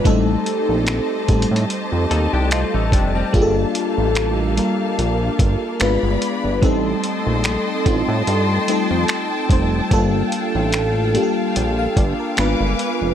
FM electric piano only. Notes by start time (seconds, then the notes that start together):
0.04 G3 A3 C4 D#4 A4
1.28 G3 A3 C4 D#4 A4
2.52 D#5
2.93 G5
3.15 D#5
3.33 G3 A#3 D4 F4 G#4
3.42 A4
4.57 G3 A#3 D4 F4 A#4
5.80 G#3 B3 D4 F4 B4
6.62 G3 A3 C4 D#4 A4
7.85 G3 A3 C4 D#4 F4
8.68 G3 A3 C4 D#4 A4
9.50 G3 A3 C4 D#4 C5
9.91 G3 A#3 D4 F4 A4
11.14 G3 A#3 D4 F4 G4
11.23 A4
11.57 G5
11.79 F5
11.97 D5
12.20 A#4
12.37 G#3 B3 D4 F4 B4